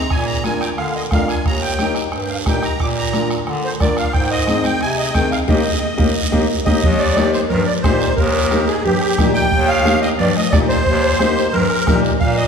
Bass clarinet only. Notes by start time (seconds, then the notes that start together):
0.11 A#2
0.78 D3
1.11 F2
1.45 D#2
2.13 G2
2.46 A#2
2.80 A#2
3.47 D3
3.81 D#3
4.14 G#2
4.82 C3
5.15 D#3
5.49 D#2
5.99 D#2
6.33 D#2
6.67 D#2
6.84 D#2
7.51 G2
7.84 A#2
8.18 D#2
8.85 G2
9.18 A#2
9.52 D#2
10.19 G2
10.53 A#2
10.86 D#2
11.55 G2
11.87 A#2
12.21 A#2